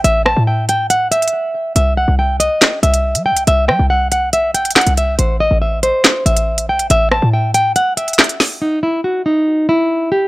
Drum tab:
HH |x-----------x---x---x-xx--------|x-----------x---x---x-x---x---x-|x-----------x---x---x-xxxxx-x---|x-----------x---x---x-x---x---x-|
CP |--------------------------------|----------------x---------------|------------------------x-------|----------------x---------------|
SD |----r---------------------------|----------------o---------------|----r-------------------o-------|----------------o---------------|

HH |x-----------x---x---x-xxxxx-o---|--------------------------------|
CP |------------------------x-------|--------------------------------|
SD |----r-------------------o---o---|--------------------------------|